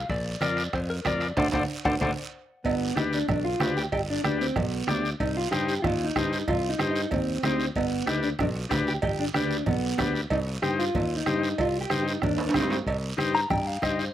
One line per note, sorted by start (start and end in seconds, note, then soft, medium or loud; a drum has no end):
0.09 0.35 A#1 medium
0.09 0.41 D5 medium
0.09 bombo low medium
0.09 high conga soft
0.09 high timbale medium
0.09 long guiro medium
0.41 0.67 F2 medium
0.41 0.63 F4 medium
0.41 0.63 A#4 medium
0.41 0.64 D5 medium
0.41 0.72 D5 medium
0.41 bombo rim medium
0.41 high conga medium
0.41 high timbale medium
0.41 short guiro medium
0.57 high timbale medium
0.57 short guiro medium
0.73 0.99 F2 medium
0.73 0.79 C5 medium
0.73 bombo low medium
0.73 bombo rim medium
0.73 high conga soft
0.73 high timbale medium
0.73 long guiro medium
0.90 0.95 A#4 medium
1.05 1.31 F2 medium
1.05 1.27 F4 medium
1.05 1.28 A#4 medium
1.05 1.28 D5 medium
1.05 1.37 D5 medium
1.05 bombo low medium
1.05 bombo rim medium
1.05 high conga medium
1.05 high timbale medium
1.05 low timbale medium
1.05 short guiro medium
1.20 high timbale medium
1.20 short guiro medium
1.37 1.49 D2 medium
1.37 1.48 A4 medium
1.37 1.48 C5 medium
1.37 1.48 D5 medium
1.37 1.48 F#5 medium
1.37 bombo low medium
1.37 high conga medium
1.37 high timbale medium
1.37 long guiro loud
1.52 1.65 D2 medium
1.52 1.64 A4 medium
1.52 1.63 C5 medium
1.52 1.64 C5 medium
1.52 1.63 D5 medium
1.52 1.64 D5 medium
1.52 1.64 F#5 medium
1.52 bombo low medium
1.52 high conga medium
1.52 high timbale medium
1.52 long guiro medium
1.85 1.97 D2 medium
1.85 1.95 A4 medium
1.85 1.95 C5 medium
1.85 1.96 C5 medium
1.85 1.95 D5 medium
1.85 1.96 D5 medium
1.85 1.95 F#5 medium
1.85 bombo low medium
1.85 high conga medium
1.85 high timbale medium
1.85 long guiro medium
2.01 2.13 D2 medium
2.01 2.11 A4 medium
2.01 2.11 C5 medium
2.01 2.11 D5 medium
2.01 2.11 F#5 medium
2.01 bombo low medium
2.01 high conga loud
2.01 high timbale medium
2.01 long guiro medium
2.64 2.90 G1 medium
2.64 2.94 B3 medium
2.64 bombo low medium
2.64 cowbell loud
2.64 high conga soft
2.64 long guiro medium
2.95 3.22 D2 medium
2.95 3.18 D4 medium
2.95 3.02 D#4 medium
2.95 3.19 G4 medium
2.95 3.19 B4 medium
2.95 bombo rim medium
2.95 high conga medium
2.95 short guiro medium
3.13 3.28 D4 medium
3.13 short guiro medium
3.28 3.54 B1 medium
3.28 3.44 D4 medium
3.28 bombo low medium
3.28 bombo rim medium
3.28 cowbell medium
3.28 high conga soft
3.28 low conga medium
3.28 long guiro medium
3.45 3.74 F4 loud
3.59 3.86 D2 medium
3.59 3.82 D4 medium
3.59 3.83 G4 medium
3.59 3.83 B4 medium
3.59 bombo rim medium
3.59 high conga medium
3.59 low timbale medium
3.59 short guiro medium
3.77 3.82 G4 loud
3.77 short guiro medium
3.92 4.18 G1 medium
3.92 3.98 G4 loud
3.92 bombo low medium
3.92 cowbell loud
3.92 high conga soft
3.92 long guiro medium
4.10 4.24 D4 loud
4.24 4.50 D2 medium
4.24 4.47 D4 medium
4.24 4.39 D4 medium
4.24 4.47 G4 medium
4.24 4.47 B4 medium
4.24 bombo rim medium
4.24 high conga medium
4.24 short guiro medium
4.41 4.56 C4 medium
4.41 short guiro medium
4.56 4.82 B1 medium
4.56 5.04 B3 medium
4.56 bombo low medium
4.56 bombo rim medium
4.56 cowbell medium
4.56 high conga soft
4.56 low conga medium
4.56 long guiro medium
4.87 5.13 D2 medium
4.87 5.10 D4 medium
4.87 5.10 G4 medium
4.87 5.11 D5 medium
4.87 bombo rim medium
4.87 high conga medium
4.87 low timbale medium
4.87 short guiro medium
5.05 short guiro medium
5.20 5.46 C2 medium
5.20 5.35 D#4 medium
5.20 bombo low medium
5.20 cowbell loud
5.20 high conga soft
5.20 long guiro medium
5.37 5.51 F4 loud
5.51 5.77 G2 medium
5.51 5.74 D#4 medium
5.51 5.82 G4 loud
5.51 5.74 G4 medium
5.51 5.75 C5 medium
5.51 bombo rim medium
5.51 high conga medium
5.51 short guiro medium
5.68 short guiro medium
5.82 6.10 D#2 loud
5.82 6.05 F4 medium
5.82 bombo low medium
5.82 bombo rim medium
5.82 cowbell medium
5.82 high conga soft
5.82 low conga medium
5.82 long guiro medium
6.04 6.24 D#4 medium
6.16 6.41 G2 medium
6.16 6.38 D#4 medium
6.16 6.38 G4 medium
6.16 6.39 C5 medium
6.16 bombo low medium
6.16 bombo rim medium
6.16 high conga medium
6.16 short guiro medium
6.25 6.46 D#4 medium
6.33 short guiro medium
6.48 6.73 C2 loud
6.48 6.70 F4 loud
6.48 bombo low medium
6.48 cowbell loud
6.48 high conga soft
6.48 low conga medium
6.48 long guiro medium
6.69 6.89 D#4 medium
6.79 7.05 G2 medium
6.79 7.02 D#4 medium
6.79 7.02 G4 medium
6.79 7.02 C5 medium
6.79 bombo rim medium
6.79 high conga medium
6.79 short guiro medium
6.91 7.10 D#4 medium
6.96 short guiro medium
7.11 7.37 D#2 loud
7.11 7.42 C4 medium
7.11 bombo low medium
7.11 cowbell medium
7.11 high conga soft
7.11 low conga medium
7.11 long guiro medium
7.43 7.69 D2 medium
7.43 7.67 C4 medium
7.43 7.66 D#4 medium
7.43 7.66 G4 medium
7.43 7.66 C5 medium
7.43 bombo rim medium
7.43 high conga medium
7.43 low timbale medium
7.43 short guiro medium
7.60 short guiro medium
7.76 8.01 G1 medium
7.76 8.06 B3 medium
7.76 bombo low medium
7.76 cowbell loud
7.76 high conga soft
7.76 long guiro medium
8.06 8.33 D2 medium
8.06 8.29 D4 medium
8.06 8.23 D#4 medium
8.06 8.30 G4 medium
8.06 8.30 B4 medium
8.06 bombo rim medium
8.06 high conga medium
8.06 short guiro medium
8.23 8.29 D4 medium
8.23 short guiro medium
8.39 8.65 B1 loud
8.39 8.45 D4 medium
8.39 bombo low medium
8.39 bombo rim medium
8.39 cowbell medium
8.39 high conga soft
8.39 low conga medium
8.39 long guiro medium
8.55 8.87 F4 loud
8.69 8.97 D2 medium
8.69 8.93 D4 medium
8.69 8.93 G4 medium
8.69 8.93 B4 medium
8.69 bombo low medium
8.69 bombo rim medium
8.69 high conga medium
8.69 low timbale medium
8.69 short guiro medium
8.87 8.93 G4 medium
8.87 short guiro medium
9.02 9.29 G1 medium
9.02 9.20 G4 loud
9.02 bombo low medium
9.02 cowbell loud
9.02 high conga soft
9.02 low conga medium
9.02 long guiro medium
9.20 9.25 D4 medium
9.34 9.61 D2 medium
9.34 9.57 D4 medium
9.34 9.65 D4 medium
9.34 9.57 G4 medium
9.34 9.57 B4 medium
9.34 bombo rim medium
9.34 high conga medium
9.34 short guiro medium
9.51 short guiro medium
9.66 9.93 B1 medium
9.66 10.12 B3 medium
9.66 bombo low medium
9.66 cowbell medium
9.66 high conga soft
9.66 low conga medium
9.66 long guiro medium
9.98 10.24 D2 medium
9.98 10.21 D4 medium
9.98 10.21 G4 medium
9.98 10.21 B4 medium
9.98 bombo low medium
9.98 bombo rim medium
9.98 high conga medium
9.98 low conga medium
9.98 low timbale medium
9.98 short guiro medium
10.15 short guiro medium
10.30 10.56 C2 loud
10.30 10.37 D#4 loud
10.30 bombo low medium
10.30 cowbell loud
10.30 long guiro medium
10.47 10.63 F4 medium
10.62 10.88 G2 medium
10.62 10.85 D#4 medium
10.62 10.67 G4 loud
10.62 10.85 G4 medium
10.62 10.85 C5 medium
10.62 bombo rim medium
10.62 high conga medium
10.62 short guiro medium
10.79 11.14 F4 medium
10.79 short guiro medium
10.94 11.20 D#2 loud
10.94 bombo low medium
10.94 cowbell medium
10.94 high conga soft
10.94 low conga medium
10.94 long guiro medium
11.17 11.36 D#4 medium
11.26 11.52 G2 medium
11.26 11.49 D#4 medium
11.26 11.49 G4 medium
11.26 11.49 C5 medium
11.26 bombo rim medium
11.26 high conga medium
11.26 short guiro medium
11.38 11.58 D#4 medium
11.43 short guiro medium
11.58 11.84 C2 medium
11.58 11.80 F4 medium
11.58 bombo low medium
11.58 cowbell loud
11.58 high conga soft
11.58 long guiro medium
11.81 12.00 G4 loud
11.90 12.16 G2 medium
11.90 12.13 D#4 medium
11.90 12.13 G4 medium
11.90 12.13 C5 medium
11.90 bombo rim medium
11.90 high conga medium
11.90 short guiro medium
12.03 12.22 D#4 medium
12.08 short guiro medium
12.22 12.48 D#2 loud
12.22 12.53 D4 medium
12.22 bombo low medium
12.22 bombo rim medium
12.22 cowbell medium
12.22 high conga soft
12.22 low conga medium
12.22 long guiro medium
12.38 high timbale medium
12.49 high timbale medium
12.54 12.80 G2 medium
12.54 12.78 C4 medium
12.54 12.77 D#4 medium
12.54 12.77 G4 medium
12.54 12.77 C5 medium
12.54 bombo low medium
12.54 bombo rim medium
12.54 high conga medium
12.54 short guiro medium
12.60 low timbale medium
12.70 low timbale medium
12.70 short guiro medium
12.86 13.12 C2 medium
12.86 bombo low medium
12.86 cowbell loud
12.86 high conga soft
12.86 long guiro medium
13.17 13.44 G2 medium
13.17 13.40 D#4 medium
13.17 13.41 G4 medium
13.17 13.41 C5 medium
13.17 bombo rim medium
13.17 high conga medium
13.17 short guiro medium
13.35 13.50 A#5 medium
13.35 short guiro medium
13.50 13.76 G2 medium
13.50 13.67 G5 medium
13.50 bombo low medium
13.50 bombo rim medium
13.50 cowbell medium
13.50 high conga soft
13.50 low conga medium
13.50 long guiro medium
13.67 13.82 F5 medium
13.82 14.08 G2 medium
13.82 14.05 D#4 medium
13.82 14.05 G4 medium
13.82 14.05 C5 medium
13.82 14.00 D#5 medium
13.82 bombo low medium
13.82 bombo rim medium
13.82 high conga medium
13.82 short guiro medium
13.99 14.14 C5 medium
13.99 short guiro medium